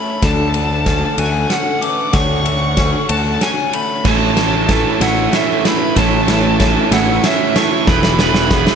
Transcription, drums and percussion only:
0, 0, Header, 1, 2, 480
1, 0, Start_track
1, 0, Key_signature, 3, "major"
1, 0, Tempo, 636943
1, 173, Time_signature, 6, 3, 24, 8
1, 6595, End_track
2, 0, Start_track
2, 0, Title_t, "Drums"
2, 169, Note_on_c, 9, 38, 60
2, 169, Note_on_c, 9, 51, 78
2, 170, Note_on_c, 9, 36, 97
2, 244, Note_off_c, 9, 38, 0
2, 244, Note_off_c, 9, 51, 0
2, 246, Note_off_c, 9, 36, 0
2, 407, Note_on_c, 9, 51, 64
2, 482, Note_off_c, 9, 51, 0
2, 650, Note_on_c, 9, 38, 65
2, 650, Note_on_c, 9, 51, 64
2, 651, Note_on_c, 9, 36, 71
2, 725, Note_off_c, 9, 38, 0
2, 725, Note_off_c, 9, 51, 0
2, 726, Note_off_c, 9, 36, 0
2, 889, Note_on_c, 9, 51, 85
2, 964, Note_off_c, 9, 51, 0
2, 1130, Note_on_c, 9, 38, 61
2, 1130, Note_on_c, 9, 51, 62
2, 1205, Note_off_c, 9, 38, 0
2, 1205, Note_off_c, 9, 51, 0
2, 1374, Note_on_c, 9, 51, 60
2, 1449, Note_off_c, 9, 51, 0
2, 1606, Note_on_c, 9, 38, 70
2, 1606, Note_on_c, 9, 51, 86
2, 1611, Note_on_c, 9, 36, 100
2, 1682, Note_off_c, 9, 38, 0
2, 1682, Note_off_c, 9, 51, 0
2, 1686, Note_off_c, 9, 36, 0
2, 1850, Note_on_c, 9, 51, 72
2, 1926, Note_off_c, 9, 51, 0
2, 2087, Note_on_c, 9, 38, 73
2, 2087, Note_on_c, 9, 51, 68
2, 2091, Note_on_c, 9, 36, 78
2, 2163, Note_off_c, 9, 38, 0
2, 2163, Note_off_c, 9, 51, 0
2, 2166, Note_off_c, 9, 36, 0
2, 2331, Note_on_c, 9, 51, 92
2, 2406, Note_off_c, 9, 51, 0
2, 2572, Note_on_c, 9, 38, 65
2, 2572, Note_on_c, 9, 51, 68
2, 2647, Note_off_c, 9, 38, 0
2, 2647, Note_off_c, 9, 51, 0
2, 2813, Note_on_c, 9, 51, 68
2, 2889, Note_off_c, 9, 51, 0
2, 3051, Note_on_c, 9, 38, 77
2, 3051, Note_on_c, 9, 49, 88
2, 3053, Note_on_c, 9, 36, 107
2, 3126, Note_off_c, 9, 38, 0
2, 3126, Note_off_c, 9, 49, 0
2, 3128, Note_off_c, 9, 36, 0
2, 3291, Note_on_c, 9, 38, 78
2, 3291, Note_on_c, 9, 51, 71
2, 3366, Note_off_c, 9, 38, 0
2, 3366, Note_off_c, 9, 51, 0
2, 3533, Note_on_c, 9, 38, 84
2, 3533, Note_on_c, 9, 51, 69
2, 3534, Note_on_c, 9, 36, 75
2, 3608, Note_off_c, 9, 38, 0
2, 3608, Note_off_c, 9, 51, 0
2, 3610, Note_off_c, 9, 36, 0
2, 3777, Note_on_c, 9, 38, 80
2, 3777, Note_on_c, 9, 51, 91
2, 3852, Note_off_c, 9, 38, 0
2, 3852, Note_off_c, 9, 51, 0
2, 4017, Note_on_c, 9, 38, 82
2, 4017, Note_on_c, 9, 51, 60
2, 4092, Note_off_c, 9, 38, 0
2, 4092, Note_off_c, 9, 51, 0
2, 4259, Note_on_c, 9, 38, 80
2, 4259, Note_on_c, 9, 51, 68
2, 4334, Note_off_c, 9, 38, 0
2, 4334, Note_off_c, 9, 51, 0
2, 4495, Note_on_c, 9, 38, 87
2, 4495, Note_on_c, 9, 51, 89
2, 4496, Note_on_c, 9, 36, 100
2, 4570, Note_off_c, 9, 38, 0
2, 4570, Note_off_c, 9, 51, 0
2, 4571, Note_off_c, 9, 36, 0
2, 4733, Note_on_c, 9, 38, 94
2, 4733, Note_on_c, 9, 51, 71
2, 4808, Note_off_c, 9, 38, 0
2, 4808, Note_off_c, 9, 51, 0
2, 4973, Note_on_c, 9, 38, 92
2, 4973, Note_on_c, 9, 51, 67
2, 4975, Note_on_c, 9, 36, 81
2, 5048, Note_off_c, 9, 38, 0
2, 5048, Note_off_c, 9, 51, 0
2, 5050, Note_off_c, 9, 36, 0
2, 5214, Note_on_c, 9, 38, 88
2, 5214, Note_on_c, 9, 51, 88
2, 5289, Note_off_c, 9, 38, 0
2, 5289, Note_off_c, 9, 51, 0
2, 5454, Note_on_c, 9, 38, 95
2, 5454, Note_on_c, 9, 51, 69
2, 5530, Note_off_c, 9, 38, 0
2, 5530, Note_off_c, 9, 51, 0
2, 5695, Note_on_c, 9, 38, 91
2, 5695, Note_on_c, 9, 51, 68
2, 5771, Note_off_c, 9, 38, 0
2, 5771, Note_off_c, 9, 51, 0
2, 5934, Note_on_c, 9, 38, 89
2, 5935, Note_on_c, 9, 36, 111
2, 6009, Note_off_c, 9, 38, 0
2, 6010, Note_off_c, 9, 36, 0
2, 6053, Note_on_c, 9, 38, 86
2, 6128, Note_off_c, 9, 38, 0
2, 6170, Note_on_c, 9, 38, 97
2, 6246, Note_off_c, 9, 38, 0
2, 6289, Note_on_c, 9, 38, 95
2, 6364, Note_off_c, 9, 38, 0
2, 6410, Note_on_c, 9, 38, 97
2, 6412, Note_on_c, 9, 36, 81
2, 6485, Note_off_c, 9, 38, 0
2, 6488, Note_off_c, 9, 36, 0
2, 6532, Note_on_c, 9, 38, 101
2, 6595, Note_off_c, 9, 38, 0
2, 6595, End_track
0, 0, End_of_file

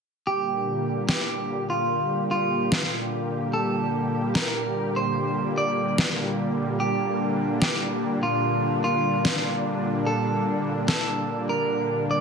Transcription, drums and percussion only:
0, 0, Header, 1, 2, 480
1, 0, Start_track
1, 0, Key_signature, -2, "minor"
1, 0, Tempo, 408163
1, 318, Time_signature, 4, 2, 24, 8
1, 14355, End_track
2, 0, Start_track
2, 0, Title_t, "Drums"
2, 1277, Note_on_c, 9, 38, 107
2, 1395, Note_off_c, 9, 38, 0
2, 3197, Note_on_c, 9, 38, 115
2, 3314, Note_off_c, 9, 38, 0
2, 3323, Note_on_c, 9, 38, 34
2, 3441, Note_off_c, 9, 38, 0
2, 5117, Note_on_c, 9, 38, 113
2, 5235, Note_off_c, 9, 38, 0
2, 7037, Note_on_c, 9, 38, 113
2, 7154, Note_off_c, 9, 38, 0
2, 7163, Note_on_c, 9, 38, 34
2, 7281, Note_off_c, 9, 38, 0
2, 8957, Note_on_c, 9, 38, 107
2, 9074, Note_off_c, 9, 38, 0
2, 10877, Note_on_c, 9, 38, 107
2, 10995, Note_off_c, 9, 38, 0
2, 11003, Note_on_c, 9, 38, 31
2, 11121, Note_off_c, 9, 38, 0
2, 12797, Note_on_c, 9, 38, 105
2, 12915, Note_off_c, 9, 38, 0
2, 14355, End_track
0, 0, End_of_file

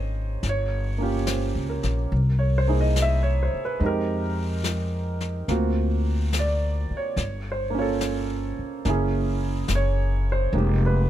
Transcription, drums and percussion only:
0, 0, Header, 1, 2, 480
1, 0, Start_track
1, 0, Key_signature, -4, "minor"
1, 0, Tempo, 841515
1, 246, Time_signature, 4, 2, 24, 8
1, 6330, End_track
2, 0, Start_track
2, 0, Title_t, "Drums"
2, 244, Note_on_c, 9, 25, 37
2, 244, Note_on_c, 9, 38, 29
2, 301, Note_off_c, 9, 38, 0
2, 723, Note_on_c, 9, 38, 45
2, 723, Note_on_c, 9, 44, 48
2, 780, Note_off_c, 9, 38, 0
2, 780, Note_off_c, 9, 44, 0
2, 1045, Note_on_c, 9, 38, 27
2, 1102, Note_off_c, 9, 38, 0
2, 1201, Note_off_c, 9, 25, 0
2, 1201, Note_on_c, 9, 25, 41
2, 1687, Note_on_c, 9, 38, 42
2, 1687, Note_on_c, 9, 44, 55
2, 1744, Note_off_c, 9, 38, 0
2, 1744, Note_off_c, 9, 44, 0
2, 2169, Note_off_c, 9, 25, 0
2, 2169, Note_on_c, 9, 25, 32
2, 2646, Note_on_c, 9, 38, 41
2, 2646, Note_on_c, 9, 44, 53
2, 2703, Note_off_c, 9, 38, 0
2, 2703, Note_off_c, 9, 44, 0
2, 2969, Note_on_c, 9, 38, 27
2, 3026, Note_off_c, 9, 38, 0
2, 3129, Note_off_c, 9, 25, 0
2, 3129, Note_on_c, 9, 25, 34
2, 3129, Note_on_c, 9, 38, 32
2, 3186, Note_off_c, 9, 38, 0
2, 3609, Note_on_c, 9, 38, 45
2, 3609, Note_on_c, 9, 44, 55
2, 3666, Note_off_c, 9, 38, 0
2, 3666, Note_off_c, 9, 44, 0
2, 4090, Note_off_c, 9, 25, 0
2, 4090, Note_on_c, 9, 25, 33
2, 4090, Note_on_c, 9, 38, 30
2, 4147, Note_off_c, 9, 38, 0
2, 4567, Note_on_c, 9, 38, 45
2, 4567, Note_on_c, 9, 44, 47
2, 4624, Note_off_c, 9, 38, 0
2, 4624, Note_off_c, 9, 44, 0
2, 5048, Note_off_c, 9, 25, 0
2, 5048, Note_on_c, 9, 25, 31
2, 5048, Note_on_c, 9, 38, 32
2, 5105, Note_off_c, 9, 38, 0
2, 5522, Note_on_c, 9, 38, 47
2, 5522, Note_on_c, 9, 44, 58
2, 5579, Note_off_c, 9, 38, 0
2, 5579, Note_off_c, 9, 44, 0
2, 6002, Note_off_c, 9, 25, 0
2, 6002, Note_on_c, 9, 25, 41
2, 6330, Note_off_c, 9, 25, 0
2, 6330, End_track
0, 0, End_of_file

